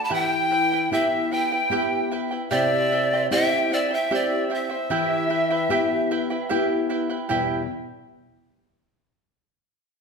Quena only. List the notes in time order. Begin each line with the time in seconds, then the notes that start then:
0.03 B5
0.13 G5
0.93 E5
1.32 G5
2.50 E5
3.31 G5
3.74 E5
3.95 G5
4.14 E5
4.54 E5